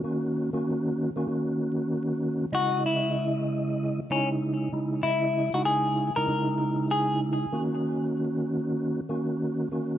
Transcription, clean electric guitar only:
X:1
M:4/4
L:1/16
Q:"Swing 16ths" 1/4=96
K:C#dor
V:1 name="Clean electric guitar"
z16 | F2 E3 z4 z C z4 z | E3 F G3 A4- A G2 z2 | z16 |]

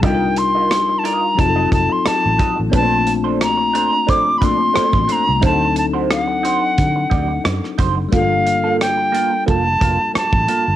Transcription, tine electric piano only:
X:1
M:4/4
L:1/8
Q:"Swing 16ths" 1/4=89
K:Dm
V:1 name="Tine electric piano"
[G,D_EFAB]4 [_G,CEF^GA]4 | [A,B,CDF]4- [A,B,CDF] [A,B,CDF]3 | [^F,CD_EA]8 | [G,A,B,DFA]8 |]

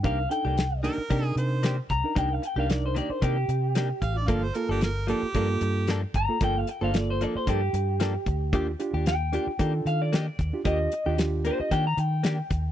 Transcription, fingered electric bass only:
X:1
M:4/4
L:1/16
Q:"Swing 16ths" 1/4=113
K:Gm
V:1 name="Fingered electric bass" clef=bass
C,,2 z C,,4 z C,2 C,4 C,, z | C,,2 z C,,4 z C,2 C,4 A,,,2 | G,,,2 z G,,,4 z G,,2 G,,4 G,,, z | G,,,2 z G,,,4 z G,,2 G,,4 D,,2 |
E,,2 z E,,4 z E,2 E,4 E,, z | E,,2 z E,,4 z E,2 E,4 E,,2 |]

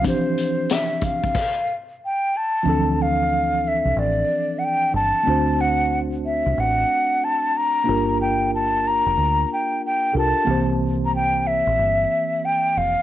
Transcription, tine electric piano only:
X:1
M:4/4
L:1/8
Q:"Swing 16ths" 1/4=92
K:Dm
V:1 name="Tine electric piano"
[E,F,CDG]4 z4 | [E,F,CDA]8 | [A,CD^Fc]8 | [B,DFGB]6- [B,DFGB] [DFGAB] |
[E,B,CGc]8 |]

